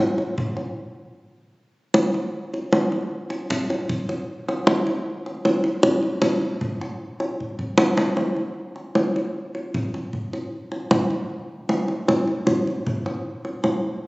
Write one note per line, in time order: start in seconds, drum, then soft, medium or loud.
0.18 kendang slap soft
0.38 kendang low soft
0.57 kendang slap soft
1.94 kendang high soft
2.14 kendang slap soft
2.54 kendang slap soft
2.73 kendang high soft
2.92 kendang slap soft
3.30 kendang slap soft
3.50 kendang low medium
3.70 kendang slap soft
3.89 kendang low soft
4.09 kendang slap soft
4.49 kendang slap soft
4.67 kendang high soft
4.87 kendang slap soft
5.26 kendang slap soft
5.45 kendang high soft
5.64 kendang slap soft
5.83 kendang high soft
5.83 kendang low soft
6.03 kendang slap soft
6.22 kendang high soft
6.22 kendang low soft
6.41 kendang slap soft
6.61 kendang low medium
6.81 kendang slap soft
7.20 kendang slap soft
7.40 kendang low soft
7.59 kendang low soft
7.78 kendang high medium
7.97 kendang high soft
8.17 kendang high soft
8.36 kendang slap soft
8.76 kendang slap soft
8.95 kendang high soft
9.16 kendang slap soft
9.55 kendang slap soft
9.74 kendang low soft
9.94 kendang slap soft
10.13 kendang low soft
10.33 kendang slap soft
10.72 kendang slap soft
10.91 kendang high soft
10.91 kendang low soft
11.10 kendang slap soft
11.69 kendang high soft
11.88 kendang slap soft
12.08 kendang high soft
12.08 kendang low soft
12.27 kendang slap soft
12.47 kendang high soft
12.47 kendang low soft
12.67 kendang slap soft
12.87 kendang low soft
13.06 kendang slap soft
13.45 kendang slap soft
13.64 kendang high soft
13.64 kendang low soft